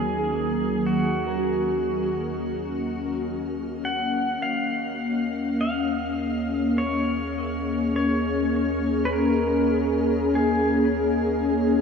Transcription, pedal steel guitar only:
0.00 0.89 G#4 medium
0.87 3.20 F#4 medium
3.85 4.42 F#5 medium
4.42 5.60 F5 medium
5.61 6.82 F5 medium
6.78 7.95 C#5 medium
7.96 9.11 C#5 medium
9.05 9.13 B4 soft
9.13 10.36 A#4 medium
10.35 11.81 G#4 medium

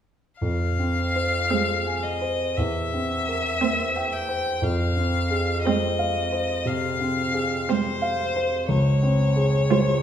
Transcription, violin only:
0.41 2.05 F5 medium
2.03 2.58 D#5 medium
2.57 4.14 E5 medium
4.12 4.65 G5 medium
4.63 5.63 F5 medium
5.64 6.69 D#5 medium
6.67 7.71 F5 medium
7.70 8.69 C5 medium
8.70 10.02 C#5 medium

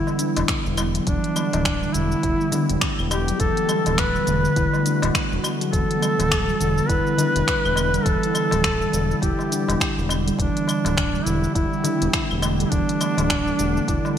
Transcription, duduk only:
0.00 0.49 E4 medium
1.06 1.95 D4 loud
1.93 2.81 E4 loud
3.10 3.38 G4 medium
3.40 4.01 A4 loud
3.99 5.15 B4 loud
5.72 6.89 A4 loud
6.88 8.06 B4 loud
8.04 9.20 A4 loud
9.21 10.05 G4 medium
10.38 11.26 D4 loud
11.25 11.54 E4 loud
11.55 12.39 E4 loud
12.64 12.72 E4 medium
12.70 14.18 D4 loud

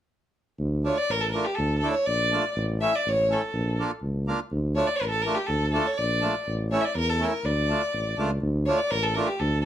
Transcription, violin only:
0.86 0.99 C#5 medium
0.98 1.12 D5 medium
1.11 1.22 A#4 medium
1.21 1.31 A4 medium
1.32 1.46 A#4 medium
1.45 1.56 G4 medium
1.55 1.78 A4 medium
1.78 1.91 A4 medium
1.91 2.08 C#5 medium
2.06 2.56 D5 medium
2.81 2.97 E5 medium
2.95 3.10 D5 medium
3.09 3.34 C#5 loud
3.32 3.80 A4 medium
4.75 4.88 C#5 medium
4.87 4.98 D5 medium
4.96 5.09 A#4 medium
5.09 5.23 A4 medium
5.22 5.36 A#4 medium
5.34 5.48 G4 medium
5.46 5.70 A4 medium
5.71 5.88 A4 medium
5.87 5.99 C#5 medium
5.98 6.47 D5 medium
6.71 6.83 C#5 medium
6.81 6.97 D5 medium
6.81 6.86 E5 medium
6.97 7.10 A#4 loud
7.09 7.25 A4 medium
7.23 7.47 A#4 medium
7.46 8.19 D5 medium
8.66 8.79 C#5 medium
8.77 8.92 D5 medium
8.91 9.05 A#4 medium
9.03 9.16 A4 medium
9.14 9.28 A#4 medium
9.27 9.40 G4 medium
9.39 9.61 A4 medium
9.62 9.65 A4 medium

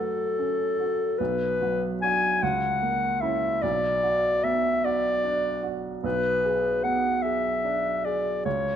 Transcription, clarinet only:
0.00 1.20 A4 medium
1.19 1.85 B4 medium
2.02 2.44 G#5 medium
2.43 3.23 F#5 medium
3.21 3.64 E5 medium
3.62 4.45 D5 medium
4.44 4.86 E5 medium
4.85 5.78 D5 medium
6.04 6.85 B4 medium
6.84 7.24 F#5 medium
7.22 8.06 E5 medium
8.05 8.45 D5 medium
8.46 8.76 C#5 medium

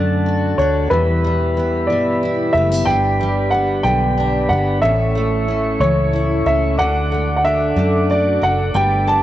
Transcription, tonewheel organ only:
0.00 0.89 D4 medium
0.00 0.89 A4 medium
0.00 0.89 F#5 medium
0.00 0.88 A5 medium
0.91 4.79 G4 medium
0.91 4.79 B4 medium
0.91 2.85 E5 medium
0.91 2.85 B5 medium
2.86 4.81 D5 medium
2.86 4.80 B5 medium
4.82 8.70 A4 medium
4.82 6.76 C#5 medium
4.82 6.76 E5 medium
4.82 6.77 C#6 medium
6.78 8.72 D5 medium
6.78 8.72 F#5 medium
6.78 9.23 D6 medium
8.75 9.23 G4 medium
8.75 9.23 B4 medium
8.75 9.23 A5 medium

